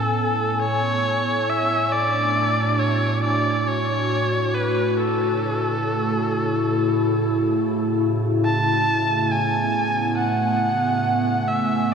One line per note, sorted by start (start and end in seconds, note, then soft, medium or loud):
0.00 11.94 A2 medium
0.00 1.49 A3 medium
0.00 2.88 B3 medium
0.00 1.48 C#4 medium
0.00 0.61 A4 medium
0.00 6.36 G#5 medium
0.59 1.51 C#5 loud
1.50 1.94 E5 loud
1.78 11.94 A3 medium
1.87 4.95 D4 medium
1.92 2.81 D5 loud
2.47 11.22 F#4 medium
2.79 3.22 C#5 medium
3.24 3.69 D5 medium
3.67 4.56 C#5 loud
4.55 4.99 B4 medium
4.97 8.01 A4 medium
5.12 11.94 C#3 medium
5.41 10.12 E4 medium
8.45 9.33 A5 loud
9.10 11.94 B3 medium
9.22 11.94 G#5 medium
9.31 10.17 G#5 medium
10.18 11.50 F#5 medium
11.48 11.94 E5 medium